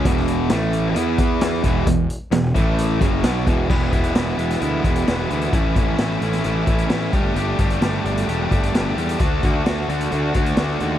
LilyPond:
<<
  \new Staff \with { instrumentName = "Distorted electric guitar" } { \time 4/4 \key a \major \tempo 4 = 131 <e, b, e>4 <a, e a>4 <e b e'>4. <e, b, e>8 | <e, b,>8 r8 <e, b,>8 <a, e a>4 <fis, cis fis>8 <b, fis b>8 <e, b, e>8 | <e gis b e'>8 <e gis b e'>8 <e gis b e'>8 <e gis b e'>8 <e gis b e'>8 <e gis b e'>8 <e gis b e'>8 <e gis b e'>8 | <a, e a cis' e'>8 <a, e a cis' e'>8 <a, e a cis' e'>8 <a, e a cis' e'>8 <a, e a cis' e'>8 <a, e a cis' e'>8 <a, e a cis' e'>8 <g a d' g'>8 |
<g a d' g'>8 <g a d' g'>8 <g a d' g'>8 <g a d' g'>8 <g a d' g'>8 <g a d' g'>8 <g a d' g'>8 <g a d' g'>8 | <d a d' fis'>8 <d a d' fis'>8 <d a d' fis'>8 <d a d' fis'>8 <d a d' fis'>8 <d a d' fis'>8 <d a d' fis'>8 <d a d' fis'>8 | }
  \new Staff \with { instrumentName = "Overdriven electric guitar" } { \time 4/4 \key a \major <e, b, e>4 <a, e a>4 <e b e'>4. <e, b, e>8 | <e, b,>8 r8 <e, b,>8 <a, e a>4 <fis, cis fis>8 <b, fis b>8 <e, b, e>8 | <e, b, e gis b e'>8 <e, b, e gis b e'>8 <e, b, e gis b e'>8 <e, b, e gis b e'>8 <e, b, e gis b e'>8 <e, b, e gis b e'>8 <e, b, e gis b e'>8 <e, b, e gis b e'>8 | <a, e a cis' e'>8 <a, e a cis' e'>8 <a, e a cis' e'>8 <a, e a cis' e'>8 <a, e a cis' e'>8 <a, e a cis' e'>8 <a, e a cis' e'>8 <g a d' g'>8 |
<g a d' g'>8 <g a d' g'>8 <g a d' g'>8 <g a d' g'>8 <g a d' g'>8 <g a d' g'>8 <g a d' g'>8 <g a d' g'>8 | <d a d' fis'>8 <d a d' fis'>8 <d a d' fis'>8 <d a d' fis'>8 <d a d' fis'>8 <d a d' fis'>8 <d a d' fis'>8 <d a d' fis'>8 | }
  \new Staff \with { instrumentName = "Picked electric bass" } { \clef bass \time 4/4 \key a \major e,,4 a,,4 e,4. e,,8 | e,,8 r8 e,,8 a,,4 fis,,8 b,,8 e,,8 | e,,8 e,,8 e,,8 e,,8 d,8 e,,8 e,,8 d,8 | a,,8 a,,8 a,,8 a,,8 a,,8 a,,8 a,,8 g,,8 |
g,,8 g,,8 g,,8 g,,8 e,,8 g,,8 g,,8 e,8 | d,8 d,8 d,8 d,8 d,8 d,8 d,8 dis,8 | }
  \new DrumStaff \with { instrumentName = "Drums" } \drummode { \time 4/4 <hh bd>16 sn16 hh8 <hh sn>8 hh8 hh8 <hh bd>8 <hh sn>8 <hh bd>8 | <hh bd>8 hh8 <hh sn>8 <hh bd>8 hh8 <hh bd>8 <hh sn>8 <hh bd>8 | <cymc bd>8 <hh bd>16 hh16 <hh sn>8 hh16 <hh sn>16 hh8 <hh bd>16 hh16 <hh sn>8 hh16 hh16 | <hh bd>8 <hh bd>8 <hh sn>8 hh16 <hh sn>16 hh8 <hh bd>16 hh16 <hh sn>8 <hh bd>8 |
hh8 <hh bd>16 hh16 <hh sn>8 hh16 hh16 hh8 <hh bd>16 hh16 <hh sn>8 hh16 hh16 | <hh bd>8 <hh bd>8 <hh sn>8 hh16 hh16 hh8 <hh bd>16 hh16 <hh sn>8 hh8 | }
>>